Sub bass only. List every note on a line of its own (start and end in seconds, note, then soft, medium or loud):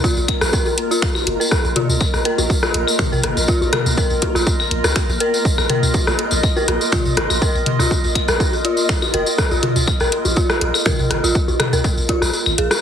0.17 0.25 A#1 medium
0.42 0.50 A#1 loud
1.27 1.36 F1 loud
1.65 1.73 A#1 loud
1.89 1.98 C#2 loud
2.14 2.22 A#1 medium
2.38 2.47 A#1 loud
2.75 2.84 A#1 loud
3.12 3.21 A#1 loud
3.24 3.33 G#1 loud
3.37 3.45 A#1 loud
3.61 3.70 A#1 loud
3.86 3.94 C#2 loud
4.10 4.19 A#1 medium
4.35 4.43 A#1 loud
4.71 4.81 A#1 medium
4.84 4.93 C#2 medium
5.09 5.17 A#1 loud
5.58 5.66 A#1 loud
5.83 5.91 C#2 loud
6.07 6.16 A#1 medium
6.32 6.40 A#1 loud
6.68 6.78 A#1 loud
7.06 7.14 A#1 loud
7.17 7.27 G#1 loud
7.30 7.39 A#1 loud
7.55 7.63 A#1 loud
7.79 7.88 C#2 loud
8.04 8.12 A#1 medium
8.29 8.37 A#1 loud
9.14 9.23 F1 loud
9.52 9.60 A#1 loud
9.76 9.84 C#2 loud
10.01 10.09 A#1 medium
10.25 10.34 A#1 loud
10.62 10.71 A#1 loud
10.99 11.07 A#1 loud
11.11 11.20 G#1 loud
11.24 11.32 A#1 loud
11.48 11.57 A#1 loud
11.73 11.81 C#2 loud
11.97 12.06 A#1 medium
12.22 12.30 A#1 loud
12.46 12.55 G#1 medium
12.58 12.68 A#1 loud